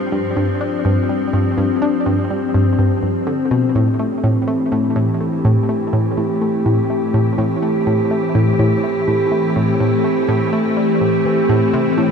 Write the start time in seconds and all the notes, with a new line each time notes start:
Already playing: F3 C4 D4 G4
0.12 G2
0.36 G2
0.61 D4
0.85 G2
1.09 G3
1.33 G2
1.58 G2
1.82 D4
2.06 G2
2.30 G3
2.54 G2
2.79 G2
3.03 G2
3.27 D3
3.51 B2
3.75 A2 E3
3.88 A3
3.99 A3 C4
4.24 A2
4.48 A3
4.69 A2 G4
4.96 A2
5.21 A3
5.45 A2
5.69 A3
5.93 A2
6.17 A2
6.42 A3
6.66 A2
6.90 A3
7.14 A2
7.38 A2
7.62 A3
7.87 A2
8.11 A3
8.35 A2
8.59 A2
8.84 A3
9.08 A2
9.32 A3
9.56 A2
9.80 A2
10.04 A3
10.29 A2
10.53 A3
10.77 G3
11.01 A2
11.25 E3
11.49 A2
11.74 C3
11.98 A2